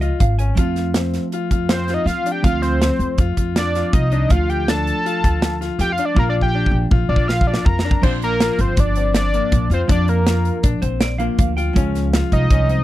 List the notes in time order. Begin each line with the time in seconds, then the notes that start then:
Already playing: F3 G#3 C#4 F4
0.01 F4 D#5, closed hi-hat
0.20 G#1 F5, kick, closed hi-hat
0.39 C#4 G#5, closed hi-hat
0.55 F2 F3 A3 C4 F4, kick, closed hi-hat
0.76 snare, closed hi-hat
0.94 C4, snare, closed hi-hat
1.14 snare, closed hi-hat
1.32 F4, closed hi-hat
1.51 F2 F4, kick, closed hi-hat
1.69 C5, snare, closed hi-hat
1.88 F4, snare, closed hi-hat
1.94 D#5
2.06 F3 F5, snare, closed hi-hat
2.26 D4, closed hi-hat
2.32 G5
2.42 D2 F3 A3 C4 F4 F5, kick, closed hi-hat
2.62 C5, snare, closed hi-hat
2.82 C4, snare, closed hi-hat
2.99 F2, closed hi-hat
3.18 F2 F4, kick, closed hi-hat
3.37 F2 F4, kick, closed hi-hat
3.56 D5, snare, closed hi-hat
3.75 F4, snare, closed hi-hat
3.93 C2 D#5, kick, closed hi-hat
4.12 D4, closed hi-hat
4.29 D2 F3 A3 D4 F4 F5, kick, closed hi-hat
4.50 G5, closed hi-hat
4.68 D4 A5, snare, closed hi-hat
4.87 closed hi-hat
5.06 F4, closed hi-hat
5.24 D2 F4, kick, closed hi-hat
5.42 snare, closed hi-hat
5.61 F4, snare, closed hi-hat
5.79 F2 G5, snare, closed hi-hat
5.92 F5
5.98 D4, closed hi-hat
6.05 D5
6.15 A#1 F3 A#3 D4 F4, kick
6.19 A#4
6.29 D5
6.41 G5, kick
6.55 D4
6.66 kick
6.71 A#1
6.91 A#1 F4, kick
7.09 A#1 F4 D5
7.16 kick
7.28 F5, snare
7.41 kick
7.47 F4 D5
7.54 snare
7.65 F2 A#5, kick
7.79 snare
7.85 D4
7.91 kick
8.02 A#1 F3 A#3 D4 F4 C5, kick, crash
8.22 A#4, closed hi-hat
8.40 F4, snare, closed hi-hat
8.59 G1 C5, kick, closed hi-hat
8.77 G1 D4 D5, kick, closed hi-hat
8.95 C4, closed hi-hat
9.14 D5, snare, closed hi-hat
9.34 A#3, closed hi-hat
9.52 A#1, kick, closed hi-hat
9.70 F2 F4 C5, closed hi-hat
9.88 F2 F3 A#3 D4 F4 D5, kick, closed hi-hat
10.08 A#4, closed hi-hat
10.26 F4, snare, closed hi-hat
10.45 closed hi-hat
10.63 A#1 D4, kick, closed hi-hat
10.82 A#1 C4 C5, kick, closed hi-hat
11.01 D5, snare, closed hi-hat
11.18 F3 A#3 D4 F4 F5, closed hi-hat
11.38 D2 F5, kick, closed hi-hat
11.57 F4 G5, closed hi-hat
11.73 C#2 F3 G#3 C#4 F4, kick, closed hi-hat
11.95 snare, closed hi-hat
12.13 F4, snare, closed hi-hat
12.32 C2 D#5, kick, closed hi-hat
12.50 C2 C#4, kick, closed hi-hat
12.69 C4, closed hi-hat